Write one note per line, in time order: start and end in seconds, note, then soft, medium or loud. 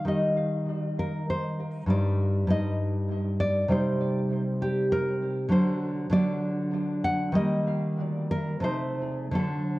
0.05 1.85 D#3 medium
0.05 1.85 G3 soft
0.05 1.86 D#4 soft
0.05 0.95 D#5 medium
0.99 1.29 A#4 medium
1.30 1.88 C5 medium
1.86 2.46 G2 medium
1.86 2.47 G3 soft
1.86 2.48 D#4 medium
1.86 2.48 D5 medium
2.47 3.66 G2 medium
2.47 3.67 G3 medium
2.47 3.68 D#4 medium
2.47 3.38 D#5 loud
3.40 3.70 D5 loud
3.68 5.47 C3 medium
3.68 5.48 G3 medium
3.68 5.48 D#4 medium
3.68 4.59 C5 medium
4.62 4.91 G4 loud
4.92 5.50 A#4 loud
5.49 6.08 D3 medium
5.49 6.10 F#3 medium
5.49 6.11 D4 medium
5.49 6.11 C5 medium
6.10 7.30 D3 medium
6.10 7.31 F#3 medium
6.10 7.31 D4 medium
6.10 7.01 D5 loud
7.04 7.34 F#5 loud
7.32 8.60 D#3 medium
7.32 8.60 G3 medium
7.32 8.61 A#3 medium
7.32 8.27 D#5 loud
8.31 8.64 A#4 loud
8.60 9.31 C3 medium
8.60 9.31 A3 medium
8.60 9.33 D#4 medium
8.60 9.33 C5 loud
9.31 9.79 D3 medium
9.31 9.79 F#3 medium
9.31 9.79 D4 medium
9.31 9.79 A4 medium